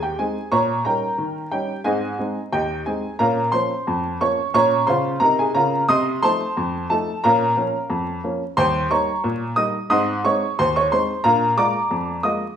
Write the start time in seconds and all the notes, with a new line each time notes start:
Already playing: D#2
0.03 G4 G5
0.19 G#3 C4 D#4 G#4 G#5
0.52 A#2 C#5 A#5 C#6
0.85 G3 C#4 D#4 A#4 G5 A#5
1.18 D#3
1.51 G3 C#4 D#4 G4 G5
1.84 G#2 C4 G#4 D#5 G#5
2.19 G#3 C4 D#4
2.52 D#2 G4 D#5 G5
2.86 G#3 C4 D#4 G#4 G#5
3.19 A#2 C#4 A#4 F5 A#5
3.52 F3 A#3 C#4 C5 C6
3.87 F2
4.21 F3 A#3 C#4 C#5 C#6
4.54 A#2 C#4 C#5 A#5 C#6
4.87 C#3 F4 C5 C6
5.20 C3 D#4 A#4 A#5
5.39 G#4 G#5
5.54 C#3 F4 A#4 A#5
5.88 C3 D#5 C6 D#6
6.22 F3 A3 D#4 C5 A5 C6
6.57 F2
6.90 F3 A3 D#4 A4 A5
7.24 A#2 C#4 A#4 F5 A#5
7.57 F3 A#3 C#4
7.90 F2
8.24 F3 A#3 C#4
8.57 D#2 G3 C5 G5 C6
8.91 G3 A#3 D#4 C#5 A#5 C#6
9.24 A#2
9.56 G3 A#3 D#4 D#5 D#6
9.90 G#2 C4 D#5 C6 D#6
10.24 G#3 C4 D#4 C#5 C#6
10.59 D#2 C5 C6
10.76 C#5 C#6
10.92 G#3 C4 D#4 C5 C6
11.24 A#2 D4 A#4 F5 A#5
11.57 G#3 A#3 F4 D5 A#5 D6
11.91 F2
12.23 G#3 A#3 F4 D#5 D#6